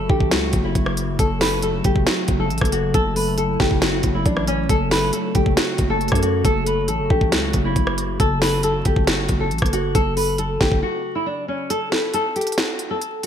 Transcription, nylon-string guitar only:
0.10 0.30 G4 medium
0.31 0.62 F#4 medium
0.64 1.16 E4 medium
1.19 1.39 A4 medium
1.41 1.61 B4 medium
1.63 1.83 A4 medium
1.85 2.05 G4 medium
2.07 2.38 F#4 medium
2.40 2.70 A4 medium
2.72 2.93 F#4 medium
2.94 3.14 A4 loud
3.16 3.36 B4 medium
3.38 3.58 A4 medium
3.60 3.80 G4 medium
3.82 4.13 F#4 medium
4.15 4.25 E4 medium
4.26 4.46 D4 medium
4.48 4.68 C#4 medium
4.69 4.90 A4 loud
4.91 5.12 B4 medium
5.13 5.33 A4 medium
5.35 5.55 G4 medium
5.57 5.88 F#4 medium
5.90 6.21 A4 medium
6.23 6.43 F#4 medium
6.45 6.65 A4 loud
6.67 6.87 B4 medium
6.88 7.09 A4 medium
7.10 7.31 G4 medium
7.32 7.63 F#4 medium
7.65 8.16 E4 medium
8.20 8.40 A4 loud
8.42 8.62 B4 medium
8.64 8.84 A4 loud
8.85 9.06 G4 medium
9.07 9.38 F#4 medium
9.40 9.71 A4 medium
9.73 9.93 F#4 medium
9.95 10.15 A4 loud
10.17 10.37 B4 medium
10.39 10.59 A4 medium
10.61 10.81 G4 medium
10.83 11.13 F#4 medium
11.15 11.25 E4 medium
11.26 11.47 D4 medium
11.48 11.69 C#4 medium
11.70 11.90 A4 loud
11.92 12.12 B4 medium
12.14 12.34 A4 medium
12.36 12.56 G4 medium
12.58 12.89 F#4 medium
12.91 13.21 A4 medium
13.23 13.27 F#4 medium

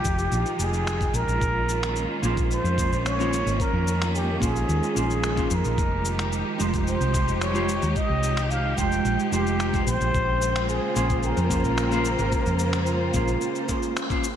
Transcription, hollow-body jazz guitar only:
2.22 2.74 A#3 medium
2.22 2.74 C#4 medium
2.22 2.75 F4 medium
2.22 2.75 G#4 medium
2.22 2.75 C5 loud
2.77 3.15 A#3 medium
2.77 3.16 C#4 medium
2.77 3.16 F4 medium
2.77 3.16 G#4 medium
2.77 3.16 C5 medium
3.18 3.34 A#3 medium
3.18 3.34 C#4 medium
3.18 3.34 F4 medium
3.18 3.35 G#4 medium
3.18 3.35 C5 loud
4.40 4.92 A#3 medium
4.40 4.92 C#4 medium
4.40 4.93 F4 medium
4.40 4.93 G#4 medium
4.40 4.93 C5 medium
4.95 5.33 A#3 medium
4.95 5.33 C#4 medium
4.95 5.34 F4 medium
4.95 5.34 G#4 medium
4.95 5.35 C5 medium
5.36 5.52 A#3 medium
5.36 5.52 C#4 medium
5.36 5.52 F4 medium
5.36 5.53 G#4 medium
5.36 5.53 C5 loud
6.58 7.10 G#3 medium
6.58 7.11 D#4 medium
6.58 7.11 F4 medium
6.58 7.11 G4 medium
6.58 7.11 C5 medium
7.13 7.51 G#3 medium
7.13 7.52 D#4 medium
7.13 7.52 F4 medium
7.13 7.52 G4 medium
7.13 7.53 C5 medium
7.53 7.70 G#3 loud
7.53 7.70 D#4 medium
7.53 7.70 F4 medium
7.53 7.70 G4 medium
7.53 7.71 C5 loud
8.76 9.28 G#3 medium
8.76 9.29 D#4 medium
8.76 9.29 F4 medium
8.76 9.29 G4 medium
8.76 9.30 C5 medium
9.31 9.70 G#3 medium
9.31 9.70 D#4 medium
9.31 9.70 F4 medium
9.31 9.70 G4 medium
9.31 9.71 C5 medium
9.73 9.85 G#3 loud
9.73 9.85 D#4 medium
9.73 9.85 F4 medium
9.73 9.86 G4 medium
9.73 9.86 C5 loud
10.94 11.47 A#3 medium
10.94 11.47 C#4 medium
10.94 11.47 F4 medium
10.94 11.48 G#4 medium
10.94 11.48 C5 loud
11.49 11.88 A#3 medium
11.49 11.88 C#4 medium
11.49 11.88 F4 medium
11.49 11.89 G#4 medium
11.49 11.89 C5 medium
11.91 12.06 A#3 loud
11.91 12.07 C#4 medium
11.91 12.07 F4 medium
11.91 12.07 G#4 medium
11.91 12.08 C5 loud
13.13 13.65 A#3 medium
13.13 13.65 C#4 medium
13.13 13.66 F4 medium
13.13 13.66 G#4 medium
13.13 13.66 C5 medium
13.68 14.06 A#3 medium
13.68 14.06 C#4 medium
13.68 14.07 F4 medium
13.68 14.07 G#4 medium
13.68 14.07 C5 medium
14.09 14.25 A#3 loud
14.09 14.25 C#4 medium
14.09 14.25 F4 medium
14.09 14.25 G#4 medium
14.09 14.26 C5 loud

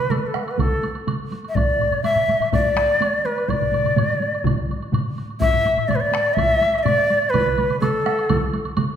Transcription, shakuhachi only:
0.00 0.12 B4 medium
0.10 0.20 A4 soft
0.19 0.28 B4 medium
0.27 0.37 A4 soft
0.36 0.46 B4 soft
0.44 0.52 A4 medium
0.51 0.61 B4 medium
0.59 0.85 A4 medium
1.49 1.57 E5 medium
1.55 2.03 D5 medium
2.04 2.49 E5 medium
2.53 3.27 D5 medium
3.25 3.51 B4 medium
3.49 4.46 D5 medium
5.40 5.90 E5 loud
5.88 5.97 D5 medium
5.95 6.02 B4 medium
6.00 6.35 D5 medium
6.34 6.78 E5 medium
6.78 6.85 E5 medium
6.83 7.31 D5 medium
7.30 7.80 B4 medium
7.80 8.49 A4 medium

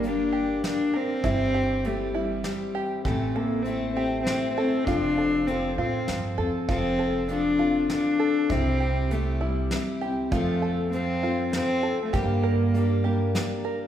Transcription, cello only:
0.07 0.66 D4 medium
0.67 0.98 D4 medium
0.96 1.87 C4 loud
1.86 2.15 A3 medium
2.15 2.72 G3 medium
3.07 3.36 A3 medium
3.35 3.64 A#3 medium
3.62 3.93 C4 medium
3.93 4.23 C4 medium
4.24 4.53 C4 medium
4.53 4.86 C4 medium
4.84 5.49 D4 loud
5.47 5.77 C4 medium
5.78 6.35 C4 medium
6.70 7.26 C4 medium
7.31 7.87 D4 medium
7.92 8.53 D4 medium
8.51 9.13 C4 medium
9.11 9.44 A3 medium
9.42 10.02 G3 medium
10.31 10.88 A3 medium
10.93 11.49 C4 medium
11.55 12.04 C4 loud
12.05 12.17 A3 medium
12.15 13.36 A#3 medium

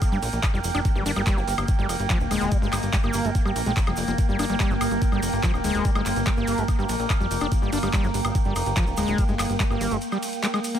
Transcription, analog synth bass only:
0.12 0.19 G2 medium
0.23 0.29 A#1 loud
0.33 0.40 A#1 medium
0.54 0.60 F1 medium
0.64 0.71 F1 loud
0.75 0.81 F1 medium
0.95 1.02 G1 medium
1.06 1.13 G1 loud
1.16 1.23 G1 medium
1.37 1.44 G1 loud
1.48 1.54 G1 loud
1.58 1.65 G1 medium
1.79 1.85 G1 medium
1.89 1.96 F1 loud
2.00 2.06 G1 medium
2.20 2.27 D1 medium
2.31 2.38 D1 loud
2.41 2.48 D1 medium
2.62 2.69 G1 medium
2.73 2.79 G1 loud
2.83 2.90 G1 medium
3.04 3.10 G1 medium
3.14 3.21 G1 loud
3.25 3.31 G1 medium
3.46 3.52 G2 medium
3.56 3.63 A#1 loud
3.66 3.73 A#1 medium
3.87 3.94 F1 medium
3.98 4.04 F1 loud
4.08 4.15 F1 loud
4.29 4.35 G1 medium
4.39 4.46 G1 loud
4.50 4.56 G1 loud
4.70 4.77 G1 medium
4.81 4.88 G1 loud
4.91 4.98 G1 medium
5.12 5.19 G1 medium
5.23 5.29 F1 loud
5.33 5.40 G1 medium
5.54 5.60 D1 medium
5.64 5.71 D1 loud
5.75 5.81 D1 medium
5.95 6.02 G1 medium
6.06 6.13 G1 loud
6.16 6.23 G1 medium
6.37 6.44 G1 medium
6.48 6.54 G1 loud
6.58 6.65 G1 medium
6.79 6.85 G2 medium
6.89 6.96 A#1 loud
7.00 7.06 A#1 medium
7.20 7.27 F1 medium
7.31 7.38 F1 loud
7.41 7.48 F1 medium
7.62 7.69 G1 medium
7.73 7.79 G1 loud
7.83 7.90 G1 medium
8.04 8.10 G1 medium
8.14 8.21 G1 loud
8.25 8.31 G1 loud
8.46 8.52 G1 medium
8.56 8.63 F1 loud
8.66 8.73 G1 medium
8.87 8.94 D1 medium
8.98 9.04 D1 loud
9.08 9.15 D1 medium
9.29 9.35 G1 medium
9.39 9.46 G1 loud
9.50 9.56 G1 medium
9.70 9.77 G1 loud
9.81 9.88 G1 loud
9.91 9.98 G1 medium

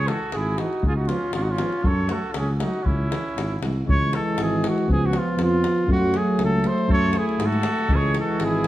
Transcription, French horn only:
0.06 0.17 G#3 soft
0.56 0.67 G#3 soft
1.06 1.17 B3 medium
1.56 1.67 B3 medium
2.08 2.19 A3 medium
2.59 2.70 A3 soft
3.09 3.19 G#3 soft
3.62 3.72 G#3 soft
3.86 4.90 G#3 medium
4.88 5.88 B3 medium
5.88 7.89 A3 medium
7.88 8.67 G#3 medium

